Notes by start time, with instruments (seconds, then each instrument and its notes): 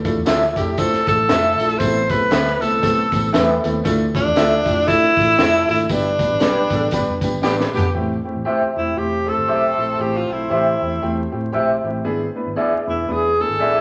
0.04 upright piano A3 D4 E4 F4 A4, kick, closed hi-hat, tambourine
0.16 fingered electric bass E2
0.26 fingered electric bass D2, upright piano A3 D4 E4 F4 A4, clean electric guitar F4 A4 E5, snare, closed hi-hat, tambourine
0.42 snare
0.56 fingered electric bass F2, upright piano A3 D4 E4 F4 A4, tenor saxophone G4, kick, closed hi-hat, tambourine
0.77 upright piano A3 D4 E4 F4 C5, tenor saxophone A4, kick, closed hi-hat, tambourine
0.94 muted fingered electric bass stroke, snare, closed hi-hat
1.07 fingered electric bass A1, upright piano A3 D4 E4 F4 A4, tenor saxophone A4, kick, closed hi-hat, tambourine
1.28 fingered electric bass F1, upright piano A3 D4 E4 F4 A4, clean electric guitar F4 A4 E5, snare, closed hi-hat, tambourine
1.59 fingered electric bass A#1, upright piano A3 D4 E4 F4 A4, closed hi-hat, tambourine
1.69 closed hi-hat
1.79 fingered electric bass A1, upright piano A3 B3 C4 E4 A4, tenor saxophone C5, kick, closed hi-hat, tambourine
2.10 upright piano A3 B3 C4 E4 A4, tenor saxophone B4, kick, closed hi-hat, tambourine
2.21 fingered electric bass B1
2.30 fingered electric bass D2, upright piano A3 B3 C4 E4 A4, clean electric guitar C4 E4 B4, snare, closed hi-hat, tambourine
2.47 snare
2.61 fingered electric bass C2, upright piano A3 B3 C4 E4 A4, tenor saxophone A4, closed hi-hat, tambourine
2.82 fingered electric bass B1, upright piano A3 B3 C4 E4 A4, kick, closed hi-hat, tambourine
3.12 fingered electric bass A1, upright piano A3 B3 C4 E4 A4, kick, closed hi-hat, tambourine
3.32 fingered electric bass E2, upright piano A3 B3 C4 E4 A4, clean electric guitar C4 E4 B4, snare, closed hi-hat, tambourine
3.63 fingered electric bass D#2, upright piano A3 B3 C4 E4 A4, closed hi-hat, tambourine
3.84 fingered electric bass D2, upright piano A3 D4 E4 F4 A4, kick, closed hi-hat, tambourine
4.14 upright piano A3 D4 E4 F4 A4, tenor saxophone D4, kick, closed hi-hat, tambourine
4.26 fingered electric bass E2
4.36 fingered electric bass D2, upright piano A3 D4 E4 F4 A4, clean electric guitar F4 A4 E5, snare, closed hi-hat, tambourine
4.66 fingered electric bass F2, upright piano A3 D4 E4 F4 G4, kick, closed hi-hat, tambourine
4.86 upright piano A3 D4 E4 F4 A4, tenor saxophone E4, kick, closed hi-hat, tambourine
5.03 muted fingered electric bass stroke, snare, closed hi-hat
5.17 fingered electric bass A1, upright piano A3 D4 E4 F4 A4, kick, closed hi-hat, tambourine
5.37 fingered electric bass F1, upright piano A3 D4 E4 F4 A4, clean electric guitar F4 A4 E5, snare, closed hi-hat, tambourine
5.54 snare
5.68 fingered electric bass G#1, upright piano A3 D4 E4 F4 A4, tenor saxophone E4, open hi-hat, tambourine
5.79 closed hi-hat
5.85 tenor saxophone E4, closed hi-hat
5.89 fingered electric bass G1, upright piano G3 B3 D4 G4 B4, tenor saxophone D4, kick, tambourine
6.19 upright piano G3 B3 D4 G4 B4, kick, closed hi-hat, tambourine
6.30 fingered electric bass A1
6.40 fingered electric bass B1, upright piano G3 B3 D4 G4 B4, clean electric guitar D4 G4 B4, snare, closed hi-hat, tambourine
6.70 fingered electric bass A1, upright piano G3 B3 D4 G4 A4, kick, closed hi-hat, tambourine
6.91 fingered electric bass G1, upright piano G3 B3 D4 G4 B4, kick, closed hi-hat, tambourine
7.07 fingered electric bass F1
7.21 upright piano G3 B3 D4 G4 B4, kick, closed hi-hat, tambourine
7.33 fingered electric bass G1
7.42 fingered electric bass A1, horn section D3 B3 G4, upright piano G3 B3 D4 G4 B4, clean electric guitar D4 G4 B4, snare, tambourine
7.61 snare
7.73 fingered electric bass A#1, horn section D3 B3 G4, upright piano G3 B3 D4 G4 B4, tambourine
7.77 floor tom
7.94 fingered electric bass A1, upright piano A3 C4 E4 G4
8.25 upright piano A3 C4 E4 G4
8.35 fingered electric bass A1
8.45 upright piano A3 C4 E4 G4, clean electric guitar G4 C5 E5
8.61 muted fingered electric bass stroke
8.76 fingered electric bass E1, upright piano A3 C4 E4 G4, tenor saxophone E4
8.96 fingered electric bass E1, upright piano A3 C4 E4 G4, horn section A3 G4 C5, tenor saxophone G4
9.26 upright piano A3 C4 E4 A4, tenor saxophone A4
9.37 fingered electric bass G1
9.48 fingered electric bass B1, upright piano A3 C4 E4 G4, clean electric guitar G4 C5 E5
9.77 fingered electric bass A#1, upright piano A3 C4 E4 G4
9.99 fingered electric bass A1, upright piano A3 C4 E4 G4, tenor saxophone G4
10.17 tenor saxophone F4
10.29 fingered electric bass B1, upright piano A3 C4 E4 G4, tenor saxophone E4
10.50 fingered electric bass A1, upright piano A3 C4 E4 G4, clean electric guitar G4 C5 E5
10.81 fingered electric bass E2, upright piano A3 C4 E4 G4
11.02 fingered electric bass E2, upright piano A3 C4 E4 G4
11.32 fingered electric bass A2, upright piano A3 C4 E4 G4
11.53 fingered electric bass A#1, upright piano A3 C4 E4 G4, clean electric guitar G4 C5 E5
11.84 fingered electric bass A1, upright piano A3 C4 E4 G4
12.04 fingered electric bass G#1, upright piano B3 D4 E4 G#4
12.36 upright piano B3 D4 E4 B4
12.46 fingered electric bass G#1
12.56 upright piano B3 D4 E4 G#4, clean electric guitar G#4 D5 E5
12.72 muted fingered electric bass stroke
12.86 fingered electric bass E1, upright piano B3 D4 E4 B4, tenor saxophone E4
13.08 fingered electric bass E1, upright piano B3 D4 E4 B4, horn section B3 D5 G#5, tenor saxophone G#4
13.39 upright piano B3 D4 E4 G#4, tenor saxophone A4
13.49 fingered electric bass G#1
13.59 fingered electric bass A#1, upright piano B3 D4 E4 G#4, clean electric guitar G#4 D5 E5